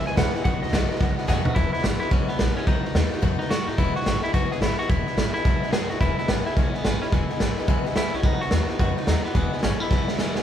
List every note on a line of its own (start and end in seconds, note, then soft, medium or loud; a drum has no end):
0.05 0.15 C#2 medium
0.05 0.17 E3 soft
0.05 0.17 G#3 medium
0.05 0.18 B3 medium
0.05 0.17 E4 medium
0.05 0.12 B4 medium
0.05 0.13 E5 medium
0.05 0.17 G#5 loud
0.05 0.13 G#5 medium
0.05 snare soft
0.16 0.31 C#2 loud
0.16 0.34 E2 medium
0.16 0.34 B2 medium
0.16 0.35 E3 medium
0.16 0.35 G#3 medium
0.16 0.34 B3 medium
0.16 0.33 E4 medium
0.16 0.27 B4 loud
0.16 0.27 E5 medium
0.16 0.43 F#5 medium
0.16 0.28 B5 loud
0.16 kick loud
0.16 snare loud
0.16 hi-hat pedal medium
0.33 0.45 E3 soft
0.33 0.45 G#3 medium
0.33 0.45 B3 medium
0.33 0.45 E4 medium
0.33 0.40 B4 medium
0.33 0.41 E5 medium
0.33 0.41 G#5 medium
0.33 muted upright bass stroke medium
0.33 snare soft
0.44 0.59 B1 loud
0.44 0.62 B2 medium
0.44 0.62 D#3 medium
0.44 0.62 A3 medium
0.44 0.62 B3 medium
0.44 0.60 F#4 medium
0.44 0.55 B4 medium
0.44 0.55 D#5 medium
0.44 0.62 F#5 loud
0.44 0.56 F#5 loud
0.44 kick loud
0.44 snare soft
0.61 0.71 D#2 medium
0.61 0.73 B3 soft
0.61 0.72 F#4 medium
0.61 0.68 B4 loud
0.61 0.68 D#5 medium
0.61 1.14 D#5 medium
0.61 0.69 F#5 loud
0.61 snare soft
0.65 0.72 A3 soft
0.65 snare soft
0.72 0.87 B1 medium
0.72 0.89 B2 medium
0.72 0.90 D#3 medium
0.72 0.90 A3 medium
0.72 0.89 B3 medium
0.72 0.88 F#4 medium
0.72 0.83 B4 medium
0.72 0.83 D#5 medium
0.72 0.84 F#5 medium
0.72 kick medium
0.72 snare loud
0.72 hi-hat pedal medium
0.89 1.00 A3 soft
0.89 1.01 B3 medium
0.89 1.00 F#4 medium
0.89 0.96 B4 medium
0.89 0.96 D#5 medium
0.89 0.97 F#5 medium
0.89 muted upright bass stroke medium
0.89 snare soft
0.96 1.17 D#3 medium
0.96 1.10 B4 medium
0.96 snare soft
1.00 1.14 B1 medium
1.00 1.18 A3 medium
1.00 1.17 B3 medium
1.00 1.15 F#4 medium
1.00 1.11 D#5 medium
1.00 1.11 F#5 loud
1.00 kick loud
1.00 snare soft
1.16 1.28 A3 medium
1.16 1.28 B3 medium
1.16 1.28 F#4 medium
1.16 1.23 B4 medium
1.16 1.24 D#5 medium
1.16 1.25 F#5 loud
1.16 muted upright bass stroke medium
1.16 snare soft
1.27 1.42 F#2 medium
1.27 1.45 B2 medium
1.27 1.45 D#3 medium
1.27 1.46 A3 medium
1.27 1.45 B3 loud
1.27 1.43 F#4 loud
1.27 1.45 G#4 loud
1.27 1.38 B4 loud
1.27 1.38 D#5 loud
1.27 1.39 F#5 loud
1.27 kick medium
1.27 snare medium
1.27 hi-hat pedal medium
1.44 1.56 A3 soft
1.44 1.56 B3 medium
1.44 1.55 F#4 medium
1.44 1.51 B4 medium
1.44 1.51 D#5 medium
1.44 1.52 F#5 loud
1.44 muted upright bass stroke medium
1.44 floor tom medium
1.55 1.66 E1 medium
1.55 1.73 E2 medium
1.55 1.73 B2 medium
1.55 1.73 E3 medium
1.55 1.73 G#3 medium
1.55 1.72 B3 medium
1.55 1.71 E4 medium
1.55 kick loud
1.55 snare soft
1.72 1.81 E3 soft
1.72 1.83 G#3 soft
1.72 1.84 B3 medium
1.72 1.83 E4 medium
1.72 muted upright bass stroke medium
1.72 snare soft
1.78 2.00 E3 medium
1.78 snare soft
1.84 1.94 G#1 medium
1.84 2.01 G#3 medium
1.84 2.00 B3 medium
1.84 1.98 E4 medium
1.84 snare loud
1.84 hi-hat pedal medium
2.00 2.11 E3 soft
2.00 2.11 G#3 soft
2.00 2.11 B3 soft
2.00 2.11 E4 medium
2.00 muted upright bass stroke medium
2.00 snare soft
2.11 2.22 B1 medium
2.11 2.28 E2 medium
2.11 2.28 B2 medium
2.11 2.29 E3 medium
2.11 2.28 G#3 medium
2.11 2.27 B3 medium
2.11 2.29 C#4 medium
2.11 2.26 E4 medium
2.11 kick loud
2.11 snare soft
2.27 2.37 E3 soft
2.27 2.38 G#3 soft
2.27 2.39 B3 soft
2.27 2.38 E4 medium
2.27 muted upright bass stroke medium
2.27 snare soft
2.38 2.50 A#1 medium
2.38 2.56 E3 medium
2.38 2.56 G#3 medium
2.38 2.55 B3 medium
2.38 2.54 E4 medium
2.38 snare loud
2.38 hi-hat pedal medium
2.55 2.67 E3 soft
2.55 2.68 G#3 soft
2.55 2.67 B3 medium
2.55 2.67 C#4 medium
2.55 2.66 E4 medium
2.55 muted upright bass stroke medium
2.55 snare soft
2.67 2.78 B1 medium
2.67 2.84 B2 medium
2.67 2.84 D#3 medium
2.67 2.85 A3 medium
2.67 2.84 B3 medium
2.67 3.36 D#4 loud
2.67 2.82 F#4 medium
2.67 kick loud
2.67 snare soft
2.84 2.94 A3 soft
2.84 2.95 B3 soft
2.84 2.94 F#4 medium
2.84 muted upright bass stroke medium
2.84 snare soft
2.94 3.05 D#2 medium
2.94 3.11 D#3 medium
2.94 3.12 A3 medium
2.94 3.12 B3 medium
2.94 3.10 F#4 medium
2.94 snare loud
2.94 hi-hat pedal medium
3.12 3.22 A3 medium
3.12 3.22 B3 medium
3.12 3.22 F#4 medium
3.12 muted upright bass stroke medium
3.12 snare soft
3.21 3.33 F#2 medium
3.21 3.39 B2 medium
3.21 3.39 D#3 loud
3.21 3.40 A3 medium
3.21 3.39 B3 loud
3.21 3.38 F#4 loud
3.21 kick loud
3.21 snare soft
3.39 3.49 A3 soft
3.39 3.50 B3 soft
3.39 3.50 D#4 medium
3.39 3.50 F#4 medium
3.39 muted upright bass stroke medium
3.39 snare soft
3.49 3.61 A2 medium
3.49 3.67 D#3 medium
3.49 3.68 A3 medium
3.49 3.67 B3 medium
3.49 3.65 F#4 medium
3.49 snare loud
3.49 hi-hat pedal medium
3.66 3.74 G#2 medium
3.66 3.79 A3 soft
3.66 3.78 B3 soft
3.66 3.79 D#4 medium
3.66 3.78 F#4 medium
3.66 snare soft
3.78 3.89 E1 loud
3.78 3.95 E2 medium
3.78 3.95 B2 medium
3.78 3.96 E3 medium
3.78 3.96 G#3 medium
3.78 3.95 B3 medium
3.78 3.94 E4 medium
3.78 kick loud
3.78 snare soft
3.95 4.04 E3 soft
3.95 4.05 G#3 soft
3.95 4.06 B3 medium
3.95 4.06 E4 medium
3.95 4.22 F#4 loud
3.95 muted upright bass stroke medium
3.95 snare soft
4.01 snare soft
4.05 4.16 G#1 medium
4.05 4.23 E3 medium
4.05 4.23 G#3 medium
4.05 4.22 B3 medium
4.05 4.21 E4 medium
4.05 snare loud
4.05 hi-hat pedal medium
4.22 4.33 E3 soft
4.22 4.33 G#3 soft
4.22 4.34 B3 medium
4.22 4.33 E4 medium
4.22 muted upright bass stroke medium
4.22 snare soft
4.33 4.44 B1 medium
4.33 4.51 E2 medium
4.33 4.51 B2 medium
4.33 4.51 E3 medium
4.33 4.51 G#3 medium
4.33 4.50 B3 medium
4.33 4.49 E4 medium
4.33 4.50 F#4 loud
4.33 kick loud
4.33 snare soft
4.50 4.60 E3 soft
4.50 4.61 G#3 soft
4.50 4.62 B3 soft
4.50 4.61 E4 medium
4.50 4.62 G#4 loud
4.50 muted upright bass stroke medium
4.50 snare soft
4.61 4.72 G#1 medium
4.61 4.78 E3 medium
4.61 4.79 G#3 medium
4.61 4.79 B3 medium
4.61 4.77 E4 medium
4.61 snare loud
4.61 hi-hat pedal medium
4.78 4.89 E3 soft
4.78 4.89 G#3 soft
4.78 4.90 B3 soft
4.78 4.89 E4 medium
4.78 4.89 F#4 loud
4.78 muted upright bass stroke medium
4.78 snare soft
4.89 5.00 E1 medium
4.89 5.06 E2 medium
4.89 5.07 B2 medium
4.89 5.07 E3 medium
4.89 5.07 G#3 medium
4.89 5.07 B3 medium
4.89 5.06 E4 medium
4.89 kick loud
4.89 snare soft
5.06 5.16 E3 soft
5.06 5.17 G#3 soft
5.06 5.18 B3 medium
5.06 5.17 E4 medium
5.06 muted upright bass stroke medium
5.06 snare soft
5.16 5.27 G#1 medium
5.16 5.34 E3 medium
5.16 5.35 G#3 medium
5.16 5.34 B3 medium
5.16 5.33 E4 medium
5.16 snare loud
5.16 hi-hat pedal medium
5.34 5.45 E3 soft
5.34 5.45 G#3 soft
5.34 5.45 B3 medium
5.34 5.45 E4 medium
5.34 muted upright bass stroke medium
5.34 snare soft
5.45 5.56 B1 medium
5.45 5.62 E2 medium
5.45 5.62 B2 medium
5.45 5.63 E3 medium
5.45 5.63 G#3 medium
5.45 5.62 B3 medium
5.45 5.61 E4 medium
5.45 kick loud
5.45 snare soft
5.62 5.72 E3 soft
5.62 5.73 G#3 soft
5.62 5.73 B3 medium
5.62 5.73 E4 medium
5.62 muted upright bass stroke medium
5.62 snare soft
5.73 5.83 C#2 medium
5.73 5.90 E3 medium
5.73 5.91 G#3 medium
5.73 5.90 B3 medium
5.73 5.89 E4 medium
5.73 5.90 G#4 loud
5.73 snare loud
5.73 hi-hat pedal medium
5.90 5.97 C#2 medium
5.90 6.01 E3 soft
5.90 6.01 G#3 soft
5.90 6.01 B3 medium
5.90 6.01 E4 medium
5.90 6.00 F#4 loud
5.90 snare soft
6.00 6.11 E1 medium
6.00 6.18 E2 medium
6.00 6.18 B2 medium
6.00 6.18 E3 medium
6.00 6.19 G#3 medium
6.00 6.18 B3 medium
6.00 6.17 E4 medium
6.00 6.11 B4 medium
6.00 6.11 E5 medium
6.00 6.12 G#5 loud
6.00 kick loud
6.00 snare soft
6.17 6.29 G#3 soft
6.17 6.29 B3 soft
6.17 6.29 E4 medium
6.17 6.24 B4 medium
6.17 6.24 E5 medium
6.17 6.25 G#5 medium
6.17 muted upright bass stroke medium
6.17 snare soft
6.21 6.28 E3 soft
6.28 6.39 G#1 medium
6.28 6.46 E3 medium
6.28 6.46 G#3 medium
6.28 6.46 B3 medium
6.28 6.38 B4 medium
6.28 6.39 E5 medium
6.28 6.39 G#5 medium
6.28 snare loud
6.28 hi-hat pedal medium
6.32 6.44 E4 medium
6.45 6.57 E3 soft
6.45 6.57 G#3 soft
6.45 6.57 B3 medium
6.45 6.56 E4 medium
6.45 6.52 B4 medium
6.45 6.52 E5 medium
6.45 6.53 G#5 medium
6.45 muted upright bass stroke medium
6.45 snare soft
6.56 6.67 B1 medium
6.56 6.74 E2 medium
6.56 6.74 B2 medium
6.56 6.74 E3 medium
6.56 6.75 G#3 medium
6.56 6.73 B3 medium
6.56 6.74 C#4 medium
6.56 6.72 E4 medium
6.56 6.66 B4 medium
6.56 6.67 E5 medium
6.56 6.67 G#5 loud
6.56 kick loud
6.56 snare soft
6.73 6.83 E3 soft
6.73 6.85 G#3 soft
6.73 6.85 B3 medium
6.73 6.84 E4 soft
6.73 6.80 B4 medium
6.73 6.80 E5 medium
6.73 6.81 G#5 medium
6.73 muted upright bass stroke medium
6.73 snare soft
6.83 6.95 G#1 medium
6.83 7.02 E3 medium
6.83 7.02 G#3 medium
6.83 7.01 B3 medium
6.83 6.94 B4 medium
6.83 6.94 E5 medium
6.83 6.95 G#5 medium
6.83 snare loud
6.83 hi-hat pedal medium
6.88 7.00 E4 medium
7.01 7.12 E3 soft
7.01 7.13 G#3 medium
7.01 7.13 B3 soft
7.01 7.06 C#4 medium
7.01 7.12 E4 soft
7.01 7.08 B4 medium
7.01 7.08 E5 medium
7.01 7.09 B5 medium
7.01 muted upright bass stroke medium
7.01 snare soft
7.12 7.23 E1 medium
7.12 7.29 E2 medium
7.12 7.30 B2 medium
7.12 7.30 E3 medium
7.12 7.30 G#3 medium
7.12 7.29 B3 medium
7.12 7.28 E4 medium
7.12 7.22 B4 medium
7.12 7.23 E5 medium
7.12 7.23 G#5 loud
7.12 kick loud
7.12 snare soft
7.29 7.39 E3 soft
7.29 7.40 G#3 soft
7.29 7.40 B3 medium
7.29 7.40 E4 medium
7.29 7.36 B4 medium
7.29 7.36 E5 medium
7.29 7.37 G#5 medium
7.29 muted upright bass stroke medium
7.29 snare soft
7.40 7.51 G#1 medium
7.40 7.57 E3 medium
7.40 7.58 G#3 medium
7.40 7.58 B3 medium
7.40 7.56 E4 medium
7.40 7.50 B4 medium
7.40 7.51 E5 medium
7.40 7.51 G#5 medium
7.40 snare loud
7.40 hi-hat pedal medium
7.57 7.68 E3 soft
7.57 7.68 G#3 medium
7.57 7.69 B3 medium
7.57 7.68 E4 medium
7.57 7.63 B4 medium
7.57 7.64 E5 medium
7.57 7.65 G#5 medium
7.57 muted upright bass stroke medium
7.57 snare soft
7.68 7.79 B1 medium
7.68 7.85 E2 medium
7.68 7.85 B2 medium
7.68 7.85 E3 medium
7.68 7.86 G#3 medium
7.68 7.85 B3 medium
7.68 7.84 E4 loud
7.68 7.78 B4 loud
7.68 7.79 E5 loud
7.68 7.79 G#5 loud
7.68 kick loud
7.68 snare soft
7.85 7.94 E3 soft
7.85 7.95 G#3 medium
7.85 7.96 B3 medium
7.85 7.96 E4 medium
7.85 7.92 B4 medium
7.85 7.92 E5 medium
7.85 7.93 G#5 loud
7.85 muted upright bass stroke medium
7.85 snare soft
7.95 8.06 C#2 medium
7.95 8.13 E3 medium
7.95 8.13 G#3 medium
7.95 8.13 B3 medium
7.95 8.11 E4 medium
7.95 8.06 B4 medium
7.95 8.06 E5 medium
7.95 8.07 G#5 medium
7.95 snare loud
7.95 hi-hat pedal medium
8.12 8.20 C#2 medium
8.12 8.24 E3 soft
8.12 8.24 G#3 soft
8.12 8.24 B3 soft
8.12 8.24 C#4 medium
8.12 8.23 E4 medium
8.12 8.19 B4 medium
8.12 8.19 E5 medium
8.12 8.20 F#5 medium
8.12 snare soft
8.23 8.34 B1 medium
8.23 8.40 B2 medium
8.23 8.41 D#3 medium
8.23 8.41 A3 medium
8.23 8.41 B3 medium
8.23 8.41 D#4 medium
8.23 8.39 F#4 medium
8.23 8.33 B4 medium
8.23 8.34 D#5 medium
8.23 8.34 F#5 loud
8.23 kick loud
8.23 snare soft
8.40 8.51 A3 soft
8.40 8.52 B3 soft
8.40 8.51 F#4 medium
8.40 8.47 B4 medium
8.40 8.47 D#5 medium
8.40 8.48 F#5 medium
8.40 muted upright bass stroke medium
8.40 snare soft
8.51 8.62 D#2 medium
8.51 8.68 D#3 medium
8.51 8.69 A3 medium
8.51 8.69 B3 medium
8.51 8.67 F#4 medium
8.51 8.61 B4 medium
8.51 8.62 F#5 medium
8.51 snare loud
8.51 hi-hat pedal medium
8.68 8.79 A3 soft
8.68 8.80 B3 soft
8.68 8.80 D#4 medium
8.68 8.79 F#4 medium
8.68 8.74 B4 medium
8.68 8.75 D#5 medium
8.68 8.75 F#5 medium
8.68 muted upright bass stroke medium
8.68 snare soft
8.78 8.90 F#2 medium
8.78 8.96 B2 medium
8.78 8.97 D#3 medium
8.78 8.97 A3 medium
8.78 8.96 B3 medium
8.78 8.94 F#4 loud
8.78 8.89 B4 medium
8.78 8.90 D#5 medium
8.78 8.90 F#5 loud
8.78 kick loud
8.78 snare soft
8.95 9.07 A3 soft
8.95 9.07 B3 soft
8.95 9.07 D#4 medium
8.95 9.07 F#4 medium
8.95 9.02 B4 medium
8.95 9.03 D#5 medium
8.95 9.03 F#5 medium
8.95 muted upright bass stroke medium
8.95 snare soft
9.06 9.18 D#2 medium
9.06 9.24 D#3 medium
9.06 9.25 A3 medium
9.06 9.24 B3 medium
9.06 9.25 D#4 medium
9.06 9.22 F#4 medium
9.06 9.17 B4 medium
9.06 9.18 D#5 medium
9.06 9.18 F#5 medium
9.06 snare loud
9.06 hi-hat pedal medium
9.23 9.35 A3 soft
9.23 9.35 B3 soft
9.23 9.35 F#4 medium
9.23 9.30 B4 medium
9.23 9.31 D#5 medium
9.23 9.31 F#5 medium
9.23 muted upright bass stroke medium
9.23 snare soft
9.34 9.45 E1 medium
9.34 9.52 E2 medium
9.34 9.52 B2 medium
9.34 9.52 E3 medium
9.34 9.53 G#3 medium
9.34 9.52 B3 medium
9.34 9.50 E4 medium
9.34 9.45 B4 medium
9.34 9.46 E5 medium
9.34 9.46 G#5 loud
9.34 kick loud
9.34 snare soft
9.52 9.61 E3 soft
9.52 9.62 G#3 soft
9.52 9.63 B3 medium
9.52 9.63 E4 medium
9.52 9.58 B4 medium
9.52 9.59 E5 medium
9.52 9.59 G#5 medium
9.52 muted upright bass stroke medium
9.52 snare soft
9.57 snare soft
9.62 9.74 G#1 medium
9.62 9.80 E3 medium
9.62 9.80 G#3 medium
9.62 9.79 B3 medium
9.62 9.80 C#4 medium
9.62 9.78 E4 medium
9.62 9.73 B4 medium
9.62 9.74 F#5 medium
9.62 snare loud
9.62 hi-hat pedal medium
9.79 9.90 E3 soft
9.79 9.91 G#3 medium
9.79 9.91 B3 soft
9.79 9.90 E4 medium
9.79 9.86 B4 medium
9.79 9.86 E5 medium
9.79 9.87 G#5 medium
9.79 muted upright bass stroke medium
9.79 snare soft
9.89 10.01 B1 medium
9.89 10.08 E2 medium
9.89 10.08 B2 medium
9.89 10.08 E3 medium
9.89 10.09 G#3 medium
9.89 10.08 B3 medium
9.89 10.06 E4 medium
9.89 10.00 B4 medium
9.89 10.01 E5 medium
9.89 10.01 G#5 loud
9.89 kick loud
9.89 snare medium
10.07 10.16 E3 soft
10.07 10.18 G#3 soft
10.07 10.19 B3 soft
10.07 10.19 E4 medium
10.07 10.14 B4 medium
10.07 10.14 E5 medium
10.07 10.15 B5 medium
10.07 muted upright bass stroke medium
10.07 snare medium
10.18 10.29 C#2 medium
10.18 10.35 E3 medium
10.18 10.36 G#3 medium
10.18 10.35 B3 medium
10.18 10.34 E4 medium
10.18 10.28 B4 medium
10.18 10.29 E5 medium
10.18 10.29 G#5 loud
10.18 snare medium
10.18 hi-hat pedal medium
10.34 10.42 C#2 medium
10.34 10.43 G#3 medium
10.34 10.43 B3 medium
10.34 10.43 E4 medium
10.34 10.41 B4 medium
10.34 10.42 E5 medium
10.34 10.43 G#5 loud
10.34 snare medium
10.38 10.43 E3 soft